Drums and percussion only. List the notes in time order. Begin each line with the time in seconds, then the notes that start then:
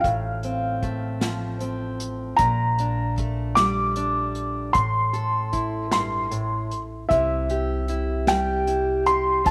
0.04 kick, closed hi-hat
0.43 closed hi-hat
0.83 kick, closed hi-hat
1.21 snare, closed hi-hat
1.60 closed hi-hat
2.00 closed hi-hat
2.38 kick, closed hi-hat
2.78 closed hi-hat
3.18 kick, closed hi-hat
3.57 snare, closed hi-hat
3.96 closed hi-hat
4.35 closed hi-hat
4.74 kick, closed hi-hat
5.14 closed hi-hat
5.53 kick, closed hi-hat
5.92 snare, closed hi-hat
6.31 closed hi-hat
6.71 closed hi-hat
7.11 kick, closed hi-hat
7.49 closed hi-hat
7.88 closed hi-hat
8.27 snare, closed hi-hat
8.67 closed hi-hat
9.06 closed hi-hat
9.46 kick, closed hi-hat